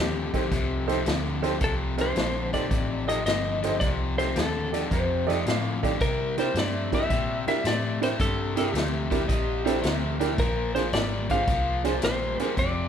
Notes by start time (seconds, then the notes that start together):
Already playing: D#2 F2 D3 G4
0.33 F2 D3 D#4 G4 A4 C5, muted fingered electric bass stroke, kick, snare, closed hi-hat
0.51 C2 F2 C3, kick, snare, closed hi-hat
0.87 F2 C3 D#4 G4 A4 C5, snare, closed hi-hat
1.06 D2 F2 D3, snare, closed hi-hat
1.42 F2 D3 D#4 G4 A4 C5, snare, closed hi-hat
1.60 C2 F2 C3 A4, kick, snare, closed hi-hat
1.98 F2 C3 D#4 G4 A4 C5, snare, closed hi-hat
2.15 A#1 F2 D3, snare, closed hi-hat
2.53 F2 D3 D#4 G4 A4 C5 D5, kick, snare, closed hi-hat
2.70 A1 F2 C3, kick, snare, closed hi-hat
3.07 F2 C3 D#4 G4 A4 D#5, snare, closed hi-hat
3.26 G1 F2 D3 D#5, snare, closed hi-hat
3.62 F2 D3 D#4 G4 A4 C5, snare, closed hi-hat
3.80 C2 F2 C3 D5, kick, snare, closed hi-hat
4.17 F2 C3 D#4 G4 A4 C5, snare, closed hi-hat
4.36 D#2 F2 D3 A4, snare, closed hi-hat
4.72 F2 D3 D#4 G4 A4 D5, snare, closed hi-hat
4.91 F2 C3 C5, kick, snare, closed hi-hat
5.27 F2 C3 D#4 G4 A4 D5 D#5, closed hi-hat
5.31 snare
5.46 F2 A2 D3 F5, snare, closed hi-hat
5.83 F2 D3 D#4 G4 A4 D5, kick, snare, closed hi-hat
6.01 C3 G3 A#4, kick, snare, closed hi-hat
6.38 C3 G3 D4 E4 G4 A#4 C5, snare, closed hi-hat
6.54 G2 C3 A3, snare, closed hi-hat
6.59 D5
6.92 C3 A3 D4 E4 G4 A#4 E5, kick, snare, closed hi-hat
7.10 A#2 C3 G3, kick, snare, closed hi-hat
7.47 C3 G3 D4 E4 G4 A#4 E5, muted fingered electric bass stroke, snare, closed hi-hat
7.64 A2 C3 A3 D5, snare, closed hi-hat
8.02 C3 A3 D4 E4 G4 A#4 C5, snare, closed hi-hat
8.19 G2 C3 G3 A4, kick, snare, closed hi-hat
8.56 C3 G3 D4 E4 G4 A#4, snare, closed hi-hat
8.72 D2 C3 A3, closed hi-hat
8.77 snare
9.10 C3 A3 D4 E4 G4 A#4, kick, snare, closed hi-hat
9.28 A#1 C3 G3 D#5, kick, snare, closed hi-hat
9.65 C3 G3 D4 E4 G4 A4 C5, snare, closed hi-hat
9.82 D2 C3 A3 A#4, snare, closed hi-hat
10.20 C3 A3 D4 E4 G4 A#4, snare, closed hi-hat
10.38 A#1 A#2 F3 A#4, kick, snare, closed hi-hat
10.75 A#2 F3 D4 F4 G#4 C5, snare, closed hi-hat
10.93 G#1 A#2 G3 D5, snare, closed hi-hat
11.30 A#2 G3 D4 F4 G#4 C5 F5, kick, snare, closed hi-hat
11.48 C2 A#2 F3, kick, snare, closed hi-hat
11.84 A#2 F3 D4 F4 G#4 C5, snare, closed hi-hat
12.02 A#1 A#2 G3 C5, snare, closed hi-hat
12.39 A#2 G3 D4 F4 G#4 C5, muted fingered electric bass stroke, snare, closed hi-hat
12.57 F1 F2 C3 D5, kick, snare, closed hi-hat